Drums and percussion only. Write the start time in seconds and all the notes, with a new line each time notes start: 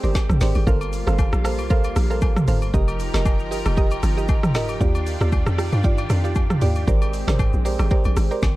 0.04 shaker
0.14 kick, snare, high agogo, low woodblock, shaker
0.29 cross-stick, mid tom, shaker
0.41 snare, open hi-hat, shaker
0.55 high agogo, shaker
0.67 kick, shaker
0.81 high agogo, shaker
0.93 open hi-hat, shaker
1.07 cross-stick, shaker
1.18 kick, high agogo, low woodblock, shaker
1.33 cross-stick, shaker
1.45 cross-stick, open hi-hat, shaker
1.59 high agogo, shaker
1.70 kick, shaker
1.84 high agogo, shaker
1.96 cross-stick, open hi-hat, shaker
2.11 shaker
2.21 kick, high agogo, low woodblock, shaker
2.36 cross-stick, mid tom, shaker
2.48 open hi-hat, shaker
2.62 high agogo, shaker
2.74 kick, shaker
2.88 high agogo, shaker
3.00 open hi-hat, shaker
3.14 cross-stick, snare, shaker
3.25 kick, high agogo, low woodblock, shaker
3.40 shaker
3.52 open hi-hat, shaker
3.66 cross-stick, high agogo, shaker
3.77 kick, shaker
3.91 high agogo, shaker
4.03 cross-stick, open hi-hat, shaker
4.18 shaker
4.28 kick, high agogo, low woodblock, shaker
4.43 cross-stick, mid tom, shaker
4.55 cross-stick, snare, open hi-hat, shaker
4.69 high agogo, shaker
4.81 kick, shaker
4.95 high agogo, shaker
5.07 open hi-hat, shaker
5.21 cross-stick, shaker
5.32 kick, high agogo, low woodblock, shaker
5.46 cross-stick, shaker
5.58 cross-stick, open hi-hat, shaker
5.72 high agogo, shaker
5.83 kick, shaker
5.98 high agogo, shaker
6.10 cross-stick, open hi-hat, shaker
6.25 shaker
6.35 kick, high agogo, low woodblock, shaker
6.50 cross-stick, mid tom, shaker
6.61 open hi-hat, shaker
6.75 high agogo, shaker
6.88 kick, shaker
7.02 high agogo, shaker
7.13 open hi-hat, shaker
7.28 cross-stick, snare, mid tom, shaker
7.39 kick, high agogo, low woodblock, shaker
7.53 shaker
7.66 open hi-hat, shaker
7.79 cross-stick, high agogo, shaker
7.90 kick, shaker
8.04 high agogo, shaker
8.17 cross-stick, open hi-hat, shaker
8.31 shaker
8.42 kick, snare, high agogo, low woodblock, shaker